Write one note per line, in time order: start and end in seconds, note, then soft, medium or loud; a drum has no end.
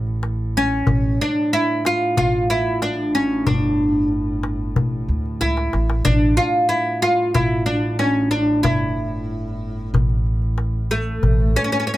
0.00 0.83 A1 medium
0.00 0.87 A2 medium
0.07 darbuka ka soft
0.23 darbuka tek medium
0.56 1.21 C#4 medium
0.56 darbuka ka soft
0.87 1.17 A1 medium
0.87 6.05 A2 medium
0.87 darbuka dum medium
1.21 1.53 D4 medium
1.36 darbuka ka soft
1.53 1.83 E4 medium
1.85 2.16 F4 medium
1.85 darbuka tek medium
2.17 3.43 A1 medium
2.17 2.50 F4 medium
2.17 darbuka dum medium
2.34 darbuka ka soft
2.50 2.82 E4 medium
2.66 darbuka ka soft
2.82 3.14 D4 medium
2.82 darbuka tek medium
3.15 3.46 C#4 medium
3.15 darbuka ka soft
3.47 4.73 G1 medium
3.47 4.08 D4 medium
3.47 darbuka dum medium
3.62 darbuka ka soft
3.79 darbuka ka soft
3.95 darbuka ka soft
4.12 darbuka ka soft
4.43 darbuka tek medium
4.76 5.07 A1 medium
4.76 darbuka dum medium
5.09 5.38 D2 medium
5.09 darbuka ka soft
5.26 darbuka ka soft
5.41 5.70 C#2 medium
5.41 6.04 E4 medium
5.41 darbuka tek soft
5.57 darbuka ka medium
5.73 6.03 A1 medium
5.73 darbuka tek medium
5.90 darbuka ka medium
6.05 6.37 A1 medium
6.05 11.24 A2 medium
6.05 6.37 D4 medium
6.05 darbuka dum medium
6.37 6.68 F4 medium
6.54 darbuka ka soft
6.69 7.02 E4 medium
7.02 7.33 F4 medium
7.02 darbuka tek medium
7.34 8.61 A1 medium
7.34 7.66 E4 medium
7.34 darbuka dum medium
7.51 darbuka ka soft
7.66 7.99 D4 medium
7.66 darbuka ka soft
7.83 darbuka ka soft
7.99 8.30 C#4 medium
7.99 darbuka tek medium
8.31 8.62 D4 medium
8.63 9.90 G1 medium
8.63 9.89 E4 medium
8.63 darbuka dum medium
9.13 darbuka ka soft
9.94 11.19 A1 medium
9.94 darbuka dum medium
10.10 darbuka ka soft
10.26 darbuka ka soft
10.42 darbuka ka soft
10.58 darbuka tek medium
10.90 11.58 A3 medium
10.90 darbuka ka soft
11.23 11.54 A1 medium
11.23 11.97 A2 medium
11.23 darbuka dum medium
11.56 11.63 C#4 medium
11.64 11.71 C#4 medium
11.72 11.78 C#4 medium
11.72 darbuka ka soft
11.80 11.86 C#4 medium
11.87 11.92 C#4 medium
11.94 11.97 C#4 medium